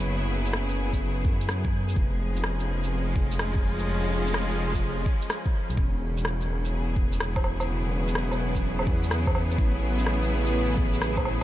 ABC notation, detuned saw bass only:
X:1
M:4/4
L:1/16
Q:"Swing 16ths" 1/4=126
K:Emix
V:1 name="Detuned saw bass" clef=bass
F,,,8- F,,,2 F,,6 | ^E,,,8- E,,,2 E,,,4 E,,,2 | ^E,,,8- E,,,2 z4 z B,,, | E,,,8- E,,,2 E,,,4 E,,,2 |
E,,,8- E,,,2 E,,6 | A,,,8- A,,,2 A,,,4 A,,,2 |]